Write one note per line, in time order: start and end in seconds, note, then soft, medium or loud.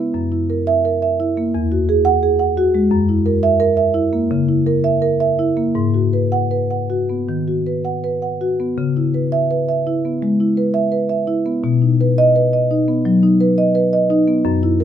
0.00 0.15 B3 soft
0.14 1.50 F#2 medium
0.32 0.60 E4 soft
0.50 0.77 A#4 soft
0.67 0.95 E5 medium
0.85 1.13 A#4 soft
1.02 1.30 E5 medium
1.20 1.47 E4 soft
1.37 1.54 A#3 soft
1.55 2.87 E2 medium
1.72 1.99 F#4 soft
1.89 2.16 G#4 medium
2.05 2.33 F#5 medium
2.23 2.50 G#4 medium
2.39 2.67 F#5 medium
2.57 2.85 F#4 medium
2.75 2.91 G#3 medium
2.91 4.27 F#2 medium
3.09 3.36 E4 soft
3.26 3.53 A#4 medium
3.43 3.71 E5 medium
3.60 3.88 A#4 medium
3.77 4.05 E5 medium
3.94 4.23 E4 medium
4.13 4.41 A#3 medium
4.31 4.59 C#3 medium
4.49 4.77 E4 soft
4.66 4.95 A#4 medium
4.84 5.13 E5 medium
5.02 5.31 A#4 medium
5.20 5.50 E5 medium
5.39 5.68 E4 medium
5.57 5.76 A#3 soft
5.75 7.24 G#2 medium
5.94 6.24 F#4 soft
6.13 6.43 B4 soft
6.32 6.63 F#5 medium
6.51 6.82 B4 soft
6.71 7.01 F#5 soft
6.90 7.20 F#4 soft
7.09 7.40 B3 soft
7.29 7.58 D#3 soft
7.48 7.77 F#4 soft
7.67 7.96 B4 soft
7.85 8.15 F#5 soft
8.04 8.34 B4 soft
8.22 8.52 F#5 soft
8.41 8.71 F#4 soft
8.60 8.78 B3 soft
8.78 10.18 C#3 medium
8.97 9.26 E4 soft
9.14 9.43 B4 soft
9.32 9.61 E5 medium
9.51 9.80 B4 medium
9.69 9.98 E5 soft
9.87 10.15 E4 soft
10.05 10.33 B3 soft
10.22 10.51 G#3 medium
10.40 10.68 E4 soft
10.57 10.85 B4 soft
10.74 11.03 E5 medium
10.92 11.21 B4 soft
11.09 11.39 E5 medium
11.27 11.56 E4 medium
11.46 11.64 B3 soft
11.64 13.02 B2 medium
11.82 12.11 D#4 soft
12.01 12.29 B4 medium
12.18 12.47 D#5 medium
12.36 12.64 B4 medium
12.53 12.81 D#5 soft
12.71 12.99 D#4 medium
12.88 13.16 B3 soft
13.05 13.34 F#3 medium
13.23 13.51 D#4 soft
13.41 13.69 B4 medium
13.58 13.86 D#5 medium
13.75 14.03 B4 medium
13.93 14.21 D#5 medium
14.10 14.38 D#4 medium
14.28 14.45 B3 medium
14.45 14.84 F#2 medium
14.63 14.84 E4 medium
14.80 14.84 A#4 medium